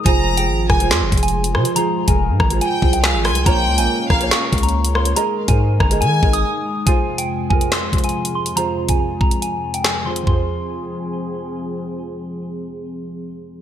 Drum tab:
HH |x-----x-------x-----xxxx--x---x-|x-----x-------x-x-----x-----o-x-|x-----x-------x-----xxxx--x---x-|x-----x-------x-x-----x---------|
CP |----------------x---------------|------------------------x-------|----------------x---------------|--------------------------------|
SD |------------r---o-----------r---|------------r-----------o---r---|------------r---o-----------r---|------------r-------------------|
FT |--------------------------------|--------------------------------|--------------------------------|--------------------------------|
BD |o-----------o-------o-----------|------o-----o-------o-----------|o-----------o-------o-----------|------o-----o-------o-----------|

HH |x-----x-------x-----xxxx--x---x-|x-----x-------x-x-----x-------x-|--------------------------------|--------------------------------|
CP |----------------x---------------|------------------------x-------|--------------------------------|--------------------------------|
SD |----------------o---------------|------------------------o-------|--------------------------------|--------------------------------|
FT |--------------------------------|--------------------------------|o-------------------------------|--------------------------------|
BD |o-----------o-------o-----------|------o-----o-------------------|o-------------------------------|--------------------------------|